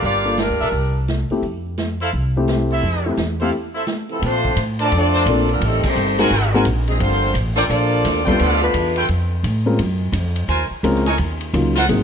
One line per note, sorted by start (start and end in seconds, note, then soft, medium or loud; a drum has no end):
0.00 0.46 G1 medium
0.00 0.36 D4 medium
0.00 0.36 G4 medium
0.00 0.36 A#4 medium
0.00 0.36 F5 medium
0.04 0.37 A#3 medium
0.04 0.37 F4 medium
0.04 0.37 G4 medium
0.04 0.37 D5 loud
0.04 open hi-hat soft
0.25 0.36 A#3 medium
0.25 0.37 D4 soft
0.25 0.37 F4 medium
0.25 0.37 A4 medium
0.38 1.05 G3 medium
0.38 1.05 D4 medium
0.38 0.72 F4 medium
0.38 1.05 A#4 medium
0.38 snare medium
0.38 closed hi-hat medium
0.49 0.60 D2 medium
0.59 0.71 A#1 medium
0.59 0.68 D4 medium
0.59 0.68 A4 medium
0.59 0.68 A#4 medium
0.59 0.68 E5 medium
0.72 1.26 C2 medium
0.72 open hi-hat soft
1.08 snare medium
1.08 closed hi-hat soft
1.30 1.42 A3 medium
1.30 1.42 C4 soft
1.30 1.42 E4 medium
1.30 1.42 G4 medium
1.30 muted upright bass stroke soft
1.30 open hi-hat soft
1.42 2.09 F2 medium
1.42 open hi-hat soft
1.78 snare medium
1.78 closed hi-hat medium
2.00 2.09 E4 medium
2.00 2.09 A4 medium
2.00 2.09 C5 medium
2.00 2.09 F5 medium
2.00 open hi-hat soft
2.12 2.79 C2 medium
2.12 open hi-hat soft
2.37 2.81 A3 medium
2.37 2.81 C4 medium
2.37 2.81 E4 medium
2.37 2.81 G4 medium
2.48 snare medium
2.48 closed hi-hat soft
2.70 3.15 E4 medium
2.70 3.16 A4 medium
2.70 3.16 C5 medium
2.70 3.16 E5 loud
2.70 open hi-hat soft
2.82 3.15 F2 medium
2.82 open hi-hat soft
3.06 3.17 A3 medium
3.06 3.17 C4 soft
3.06 3.17 E4 medium
3.06 3.17 G4 medium
3.17 3.50 E2 medium
3.17 snare medium
3.17 closed hi-hat medium
3.40 3.52 A3 medium
3.40 3.52 C4 medium
3.40 3.49 E4 medium
3.40 3.52 E4 medium
3.40 3.52 G4 medium
3.40 3.49 A4 medium
3.40 3.49 C5 medium
3.40 3.49 F5 medium
3.40 open hi-hat soft
3.52 open hi-hat soft
3.74 3.83 E4 medium
3.74 3.83 A4 medium
3.74 3.83 C5 medium
3.74 3.83 E5 medium
3.87 snare medium
3.87 closed hi-hat medium
4.09 4.21 C3 medium
4.09 4.22 E3 medium
4.09 4.23 F3 medium
4.09 4.20 A3 medium
4.09 4.23 C4 medium
4.09 4.23 E4 medium
4.09 4.22 A4 medium
4.09 open hi-hat soft
4.21 4.56 A#2 medium
4.21 4.57 F3 medium
4.21 4.56 A3 medium
4.21 4.57 C4 medium
4.21 ride medium
4.26 4.59 A3 medium
4.26 4.59 D4 medium
4.26 4.59 F4 medium
4.26 4.59 C5 loud
4.45 kick soft
4.56 4.90 A2 medium
4.56 hi-hat pedal medium
4.56 ride medium
4.79 4.92 F3 medium
4.79 4.92 A3 medium
4.79 4.88 D4 medium
4.79 4.92 D4 medium
4.79 4.87 A#4 medium
4.79 4.87 C5 medium
4.79 4.88 A5 medium
4.79 ride soft
4.85 4.94 C4 medium
4.85 4.94 F4 medium
4.85 4.94 A4 medium
4.85 4.94 D5 loud
4.92 5.25 F2 medium
4.92 5.46 F3 medium
4.92 5.46 A3 medium
4.92 5.46 D4 medium
4.92 ride medium
4.98 5.48 C4 medium
4.98 5.49 F4 medium
4.98 5.48 A4 medium
4.98 5.48 D5 medium
5.14 5.23 D4 medium
5.14 5.22 A#4 medium
5.14 5.22 C5 medium
5.14 5.23 A5 medium
5.26 5.60 A#1 medium
5.26 5.48 A#3 medium
5.26 5.48 C4 medium
5.26 5.48 D4 medium
5.26 5.48 F4 medium
5.26 5.48 A4 medium
5.26 hi-hat pedal medium
5.26 ride medium
5.49 5.61 D3 medium
5.49 5.61 F3 medium
5.49 5.62 F3 medium
5.49 5.61 A#3 medium
5.49 5.62 C4 medium
5.49 5.62 A#4 medium
5.49 ride soft
5.53 5.63 D4 medium
5.61 5.82 A1 medium
5.61 5.85 C3 medium
5.61 5.84 D#3 medium
5.61 5.85 G3 medium
5.61 5.85 A3 medium
5.61 5.85 C4 medium
5.61 ride medium
5.65 5.86 D#4 medium
5.65 5.86 A4 medium
5.83 6.29 D#3 medium
5.83 6.29 G3 medium
5.83 6.29 C4 medium
5.83 6.30 C5 medium
5.83 muted upright bass stroke soft
5.83 kick medium
5.83 crash medium
5.88 6.30 A3 medium
5.88 6.30 D#4 medium
5.88 6.30 G4 medium
5.95 6.30 G1 medium
5.95 hi-hat pedal medium
6.19 6.30 G#3 medium
6.19 6.30 C4 medium
6.19 6.30 D#4 medium
6.19 6.30 F#4 medium
6.19 6.52 F#4 loud
6.19 6.52 A#4 medium
6.19 6.30 A#4 medium
6.19 6.52 C5 medium
6.19 6.51 G#5 loud
6.19 ride soft
6.30 6.64 G#1 medium
6.30 ride medium
6.53 6.65 G#3 medium
6.53 6.65 C4 medium
6.53 6.65 D#4 medium
6.53 6.62 F#4 medium
6.53 6.65 F#4 medium
6.53 6.62 A#4 medium
6.53 6.65 A#4 medium
6.53 6.62 C5 medium
6.53 6.62 G#5 medium
6.65 6.99 A#1 medium
6.65 hi-hat pedal medium
6.65 ride medium
6.87 7.00 C3 medium
6.87 7.00 D#3 medium
6.87 7.00 F#3 medium
6.87 7.00 G#3 medium
6.87 7.00 C4 medium
6.87 7.00 D#4 medium
6.87 7.00 G#4 medium
6.87 ride soft
6.98 7.33 G1 medium
6.98 7.35 D3 medium
6.98 7.34 F3 medium
6.98 7.35 A#3 medium
6.98 7.34 C4 medium
6.98 7.35 F4 medium
6.98 7.35 A4 medium
6.98 7.35 C5 loud
6.98 ride medium
7.34 7.68 A1 loud
7.34 hi-hat pedal medium
7.34 ride medium
7.55 7.62 F3 medium
7.55 7.61 A#3 medium
7.55 7.62 A#3 medium
7.55 7.61 D4 medium
7.55 7.65 F4 medium
7.55 7.62 F4 medium
7.55 7.65 A4 medium
7.55 7.62 A4 medium
7.55 7.65 A#4 medium
7.55 7.62 D5 medium
7.55 7.65 G5 loud
7.55 ride soft
7.66 8.03 A#1 medium
7.66 8.21 F3 medium
7.66 8.22 A#3 medium
7.66 8.23 A#3 medium
7.66 8.21 D4 medium
7.66 8.23 F4 medium
7.66 8.23 A4 medium
7.66 8.23 D5 loud
7.66 ride medium
8.05 8.39 D#2 medium
8.05 snare soft
8.05 hi-hat pedal medium
8.05 ride medium
8.24 8.39 G3 medium
8.24 8.38 A3 medium
8.24 8.38 B3 medium
8.24 8.37 C4 medium
8.24 8.39 D4 medium
8.24 8.71 F4 medium
8.24 8.38 F4 medium
8.24 8.39 F4 medium
8.24 8.71 A4 medium
8.24 8.39 A4 medium
8.24 8.71 B4 medium
8.24 8.39 C5 medium
8.24 8.71 G5 medium
8.24 kick medium
8.24 ride soft
8.38 8.73 D2 medium
8.38 8.61 F3 medium
8.38 8.60 B3 medium
8.38 8.62 B3 medium
8.38 8.61 D4 medium
8.38 8.62 F4 loud
8.38 8.62 A4 medium
8.38 8.62 D5 loud
8.38 ride medium
8.61 9.06 D3 medium
8.61 9.06 A3 medium
8.61 9.06 B3 medium
8.61 9.07 D4 medium
8.61 9.06 F4 medium
8.61 9.07 F4 medium
8.61 9.06 B4 medium
8.74 9.08 E2 loud
8.74 hi-hat pedal medium
8.74 ride medium
8.96 9.05 F4 medium
8.96 9.05 A4 medium
8.96 9.05 B4 medium
8.96 9.05 G5 loud
8.96 ride soft
9.09 9.43 F2 medium
9.09 ride medium
9.43 9.78 A2 medium
9.43 hi-hat pedal medium
9.43 ride medium
9.66 9.78 G#3 medium
9.66 9.78 C4 medium
9.66 9.78 C#4 medium
9.66 9.78 F4 medium
9.66 9.78 A#4 medium
9.79 10.12 F#2 medium
9.79 ride medium
10.12 10.47 F2 loud
10.12 hi-hat pedal medium
10.12 ride medium
10.36 ride medium
10.48 10.69 D#2 medium
10.48 10.63 F4 medium
10.48 10.64 A#4 medium
10.48 10.64 C5 medium
10.48 10.63 G#5 medium
10.48 ride medium
10.70 muted upright bass stroke soft
10.83 11.17 C#2 medium
10.83 11.04 G#3 medium
10.83 11.04 C4 medium
10.83 11.04 C#4 medium
10.83 11.04 F4 medium
10.83 11.04 A#4 medium
10.83 hi-hat pedal medium
10.83 ride medium
10.95 snare soft
11.06 11.14 D#4 medium
11.06 11.14 A#4 medium
11.06 11.14 C#5 medium
11.06 11.15 G#5 medium
11.06 snare soft
11.06 ride soft
11.18 11.53 D#2 medium
11.18 ride medium
11.41 ride soft
11.53 11.87 C#2 loud
11.53 11.74 F#3 medium
11.53 11.74 A#3 medium
11.53 11.74 C#4 medium
11.53 11.74 D#4 medium
11.53 11.74 F4 medium
11.53 hi-hat pedal medium
11.53 ride medium
11.76 11.84 F4 loud
11.76 11.85 A#4 medium
11.76 11.85 C5 medium
11.76 11.85 F#5 loud
11.76 snare medium
11.76 ride medium
11.89 12.03 G#1 medium
11.89 12.03 F#3 medium
11.89 12.03 A#3 soft
11.89 12.03 C4 medium
11.89 12.03 D#4 soft
11.89 12.03 G#4 medium
11.89 snare soft
11.89 ride medium